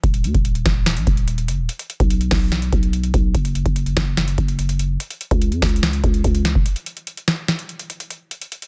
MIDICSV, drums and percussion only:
0, 0, Header, 1, 2, 480
1, 0, Start_track
1, 0, Key_signature, -6, "minor"
1, 0, Tempo, 413793
1, 42, Time_signature, 4, 2, 24, 8
1, 10063, End_track
2, 0, Start_track
2, 0, Title_t, "Drums"
2, 41, Note_on_c, 9, 36, 117
2, 41, Note_on_c, 9, 42, 83
2, 157, Note_off_c, 9, 36, 0
2, 157, Note_off_c, 9, 42, 0
2, 161, Note_on_c, 9, 42, 68
2, 277, Note_off_c, 9, 42, 0
2, 281, Note_on_c, 9, 42, 76
2, 397, Note_off_c, 9, 42, 0
2, 401, Note_on_c, 9, 36, 90
2, 401, Note_on_c, 9, 42, 49
2, 517, Note_off_c, 9, 36, 0
2, 517, Note_off_c, 9, 42, 0
2, 521, Note_on_c, 9, 42, 71
2, 637, Note_off_c, 9, 42, 0
2, 641, Note_on_c, 9, 42, 56
2, 757, Note_off_c, 9, 42, 0
2, 761, Note_on_c, 9, 36, 96
2, 761, Note_on_c, 9, 38, 95
2, 761, Note_on_c, 9, 42, 76
2, 877, Note_off_c, 9, 36, 0
2, 877, Note_off_c, 9, 38, 0
2, 877, Note_off_c, 9, 42, 0
2, 1001, Note_on_c, 9, 38, 110
2, 1001, Note_on_c, 9, 42, 79
2, 1117, Note_off_c, 9, 38, 0
2, 1117, Note_off_c, 9, 42, 0
2, 1121, Note_on_c, 9, 42, 67
2, 1237, Note_off_c, 9, 42, 0
2, 1241, Note_on_c, 9, 36, 96
2, 1241, Note_on_c, 9, 42, 57
2, 1357, Note_off_c, 9, 36, 0
2, 1357, Note_off_c, 9, 42, 0
2, 1361, Note_on_c, 9, 42, 57
2, 1477, Note_off_c, 9, 42, 0
2, 1481, Note_on_c, 9, 42, 74
2, 1597, Note_off_c, 9, 42, 0
2, 1601, Note_on_c, 9, 42, 58
2, 1717, Note_off_c, 9, 42, 0
2, 1721, Note_on_c, 9, 42, 75
2, 1837, Note_off_c, 9, 42, 0
2, 1961, Note_on_c, 9, 42, 85
2, 2077, Note_off_c, 9, 42, 0
2, 2081, Note_on_c, 9, 42, 65
2, 2197, Note_off_c, 9, 42, 0
2, 2201, Note_on_c, 9, 42, 73
2, 2317, Note_off_c, 9, 42, 0
2, 2321, Note_on_c, 9, 36, 93
2, 2321, Note_on_c, 9, 42, 52
2, 2437, Note_off_c, 9, 36, 0
2, 2437, Note_off_c, 9, 42, 0
2, 2441, Note_on_c, 9, 42, 72
2, 2557, Note_off_c, 9, 42, 0
2, 2561, Note_on_c, 9, 42, 56
2, 2677, Note_off_c, 9, 42, 0
2, 2681, Note_on_c, 9, 36, 97
2, 2681, Note_on_c, 9, 38, 96
2, 2681, Note_on_c, 9, 46, 85
2, 2797, Note_off_c, 9, 36, 0
2, 2797, Note_off_c, 9, 38, 0
2, 2797, Note_off_c, 9, 46, 0
2, 2921, Note_on_c, 9, 38, 110
2, 2921, Note_on_c, 9, 42, 79
2, 3037, Note_off_c, 9, 38, 0
2, 3037, Note_off_c, 9, 42, 0
2, 3041, Note_on_c, 9, 42, 69
2, 3157, Note_off_c, 9, 42, 0
2, 3161, Note_on_c, 9, 36, 95
2, 3161, Note_on_c, 9, 42, 61
2, 3277, Note_off_c, 9, 36, 0
2, 3277, Note_off_c, 9, 42, 0
2, 3281, Note_on_c, 9, 42, 57
2, 3397, Note_off_c, 9, 42, 0
2, 3401, Note_on_c, 9, 42, 75
2, 3517, Note_off_c, 9, 42, 0
2, 3521, Note_on_c, 9, 42, 59
2, 3637, Note_off_c, 9, 42, 0
2, 3641, Note_on_c, 9, 42, 73
2, 3642, Note_on_c, 9, 36, 94
2, 3757, Note_off_c, 9, 42, 0
2, 3758, Note_off_c, 9, 36, 0
2, 3881, Note_on_c, 9, 36, 118
2, 3881, Note_on_c, 9, 42, 82
2, 3997, Note_off_c, 9, 36, 0
2, 3997, Note_off_c, 9, 42, 0
2, 4001, Note_on_c, 9, 42, 67
2, 4117, Note_off_c, 9, 42, 0
2, 4121, Note_on_c, 9, 42, 74
2, 4237, Note_off_c, 9, 42, 0
2, 4241, Note_on_c, 9, 36, 92
2, 4241, Note_on_c, 9, 42, 49
2, 4357, Note_off_c, 9, 36, 0
2, 4357, Note_off_c, 9, 42, 0
2, 4361, Note_on_c, 9, 42, 75
2, 4477, Note_off_c, 9, 42, 0
2, 4482, Note_on_c, 9, 42, 56
2, 4598, Note_off_c, 9, 42, 0
2, 4601, Note_on_c, 9, 36, 96
2, 4601, Note_on_c, 9, 38, 96
2, 4601, Note_on_c, 9, 42, 78
2, 4717, Note_off_c, 9, 36, 0
2, 4717, Note_off_c, 9, 38, 0
2, 4717, Note_off_c, 9, 42, 0
2, 4841, Note_on_c, 9, 38, 110
2, 4841, Note_on_c, 9, 42, 80
2, 4957, Note_off_c, 9, 38, 0
2, 4957, Note_off_c, 9, 42, 0
2, 4961, Note_on_c, 9, 42, 70
2, 5077, Note_off_c, 9, 42, 0
2, 5081, Note_on_c, 9, 42, 59
2, 5082, Note_on_c, 9, 36, 95
2, 5197, Note_off_c, 9, 42, 0
2, 5198, Note_off_c, 9, 36, 0
2, 5202, Note_on_c, 9, 42, 57
2, 5318, Note_off_c, 9, 42, 0
2, 5322, Note_on_c, 9, 42, 75
2, 5438, Note_off_c, 9, 42, 0
2, 5442, Note_on_c, 9, 42, 60
2, 5558, Note_off_c, 9, 42, 0
2, 5561, Note_on_c, 9, 42, 75
2, 5677, Note_off_c, 9, 42, 0
2, 5802, Note_on_c, 9, 42, 83
2, 5918, Note_off_c, 9, 42, 0
2, 5922, Note_on_c, 9, 42, 65
2, 6038, Note_off_c, 9, 42, 0
2, 6042, Note_on_c, 9, 42, 74
2, 6158, Note_off_c, 9, 42, 0
2, 6162, Note_on_c, 9, 36, 93
2, 6162, Note_on_c, 9, 42, 51
2, 6278, Note_off_c, 9, 36, 0
2, 6278, Note_off_c, 9, 42, 0
2, 6282, Note_on_c, 9, 42, 74
2, 6398, Note_off_c, 9, 42, 0
2, 6402, Note_on_c, 9, 42, 54
2, 6518, Note_off_c, 9, 42, 0
2, 6522, Note_on_c, 9, 36, 100
2, 6522, Note_on_c, 9, 38, 96
2, 6522, Note_on_c, 9, 42, 64
2, 6522, Note_on_c, 9, 46, 81
2, 6602, Note_off_c, 9, 42, 0
2, 6602, Note_on_c, 9, 42, 64
2, 6638, Note_off_c, 9, 36, 0
2, 6638, Note_off_c, 9, 38, 0
2, 6638, Note_off_c, 9, 46, 0
2, 6682, Note_off_c, 9, 42, 0
2, 6682, Note_on_c, 9, 42, 65
2, 6762, Note_off_c, 9, 42, 0
2, 6762, Note_on_c, 9, 38, 111
2, 6762, Note_on_c, 9, 42, 81
2, 6878, Note_off_c, 9, 38, 0
2, 6878, Note_off_c, 9, 42, 0
2, 6882, Note_on_c, 9, 42, 68
2, 6998, Note_off_c, 9, 42, 0
2, 7002, Note_on_c, 9, 36, 97
2, 7002, Note_on_c, 9, 42, 60
2, 7118, Note_off_c, 9, 36, 0
2, 7118, Note_off_c, 9, 42, 0
2, 7122, Note_on_c, 9, 42, 55
2, 7238, Note_off_c, 9, 42, 0
2, 7242, Note_on_c, 9, 36, 61
2, 7242, Note_on_c, 9, 42, 75
2, 7358, Note_off_c, 9, 36, 0
2, 7358, Note_off_c, 9, 42, 0
2, 7362, Note_on_c, 9, 42, 58
2, 7478, Note_off_c, 9, 42, 0
2, 7482, Note_on_c, 9, 38, 90
2, 7482, Note_on_c, 9, 42, 74
2, 7598, Note_off_c, 9, 38, 0
2, 7598, Note_off_c, 9, 42, 0
2, 7602, Note_on_c, 9, 36, 91
2, 7718, Note_off_c, 9, 36, 0
2, 7722, Note_on_c, 9, 42, 85
2, 7838, Note_off_c, 9, 42, 0
2, 7842, Note_on_c, 9, 42, 68
2, 7958, Note_off_c, 9, 42, 0
2, 7962, Note_on_c, 9, 42, 74
2, 8078, Note_off_c, 9, 42, 0
2, 8082, Note_on_c, 9, 42, 51
2, 8198, Note_off_c, 9, 42, 0
2, 8202, Note_on_c, 9, 42, 71
2, 8318, Note_off_c, 9, 42, 0
2, 8322, Note_on_c, 9, 42, 55
2, 8438, Note_off_c, 9, 42, 0
2, 8442, Note_on_c, 9, 38, 99
2, 8442, Note_on_c, 9, 42, 76
2, 8558, Note_off_c, 9, 38, 0
2, 8558, Note_off_c, 9, 42, 0
2, 8682, Note_on_c, 9, 38, 108
2, 8682, Note_on_c, 9, 42, 79
2, 8798, Note_off_c, 9, 38, 0
2, 8798, Note_off_c, 9, 42, 0
2, 8802, Note_on_c, 9, 42, 71
2, 8918, Note_off_c, 9, 42, 0
2, 8922, Note_on_c, 9, 42, 59
2, 9038, Note_off_c, 9, 42, 0
2, 9042, Note_on_c, 9, 42, 57
2, 9158, Note_off_c, 9, 42, 0
2, 9162, Note_on_c, 9, 42, 75
2, 9278, Note_off_c, 9, 42, 0
2, 9282, Note_on_c, 9, 42, 60
2, 9398, Note_off_c, 9, 42, 0
2, 9402, Note_on_c, 9, 42, 74
2, 9518, Note_off_c, 9, 42, 0
2, 9642, Note_on_c, 9, 42, 83
2, 9758, Note_off_c, 9, 42, 0
2, 9762, Note_on_c, 9, 42, 66
2, 9878, Note_off_c, 9, 42, 0
2, 9882, Note_on_c, 9, 42, 77
2, 9998, Note_off_c, 9, 42, 0
2, 10002, Note_on_c, 9, 42, 52
2, 10063, Note_off_c, 9, 42, 0
2, 10063, End_track
0, 0, End_of_file